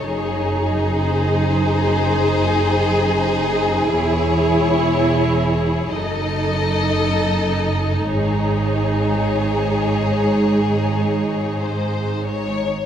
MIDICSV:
0, 0, Header, 1, 6, 480
1, 0, Start_track
1, 0, Tempo, 500000
1, 12343, End_track
2, 0, Start_track
2, 0, Title_t, "Violin section"
2, 0, Program_c, 0, 48
2, 0, Note_on_c, 0, 73, 53
2, 936, Note_off_c, 0, 73, 0
2, 976, Note_on_c, 0, 72, 55
2, 3760, Note_on_c, 0, 73, 56
2, 3763, Note_off_c, 0, 72, 0
2, 5685, Note_on_c, 0, 75, 56
2, 5690, Note_off_c, 0, 73, 0
2, 7741, Note_on_c, 0, 73, 49
2, 7756, Note_off_c, 0, 75, 0
2, 11156, Note_on_c, 0, 72, 47
2, 11162, Note_off_c, 0, 73, 0
2, 11778, Note_off_c, 0, 72, 0
2, 11779, Note_on_c, 0, 73, 67
2, 12343, Note_off_c, 0, 73, 0
2, 12343, End_track
3, 0, Start_track
3, 0, Title_t, "Violin section"
3, 0, Program_c, 1, 48
3, 31, Note_on_c, 1, 68, 63
3, 5682, Note_off_c, 1, 68, 0
3, 5693, Note_on_c, 1, 69, 53
3, 7760, Note_off_c, 1, 69, 0
3, 7762, Note_on_c, 1, 68, 47
3, 12169, Note_off_c, 1, 68, 0
3, 12343, End_track
4, 0, Start_track
4, 0, Title_t, "Viola section"
4, 0, Program_c, 2, 48
4, 58, Note_on_c, 2, 63, 58
4, 3728, Note_off_c, 2, 63, 0
4, 3767, Note_on_c, 2, 64, 63
4, 5694, Note_off_c, 2, 64, 0
4, 5698, Note_on_c, 2, 63, 49
4, 12172, Note_off_c, 2, 63, 0
4, 12343, End_track
5, 0, Start_track
5, 0, Title_t, "Cello section"
5, 0, Program_c, 3, 48
5, 49, Note_on_c, 3, 42, 59
5, 3723, Note_off_c, 3, 42, 0
5, 3757, Note_on_c, 3, 40, 72
5, 5650, Note_off_c, 3, 40, 0
5, 5682, Note_on_c, 3, 42, 53
5, 7716, Note_off_c, 3, 42, 0
5, 7753, Note_on_c, 3, 44, 56
5, 12126, Note_off_c, 3, 44, 0
5, 12343, End_track
6, 0, Start_track
6, 0, Title_t, "Double bass section"
6, 0, Program_c, 4, 48
6, 50, Note_on_c, 4, 30, 64
6, 3724, Note_off_c, 4, 30, 0
6, 3774, Note_on_c, 4, 28, 62
6, 5659, Note_off_c, 4, 28, 0
6, 5693, Note_on_c, 4, 30, 59
6, 7722, Note_off_c, 4, 30, 0
6, 7762, Note_on_c, 4, 32, 46
6, 12131, Note_off_c, 4, 32, 0
6, 12343, End_track
0, 0, End_of_file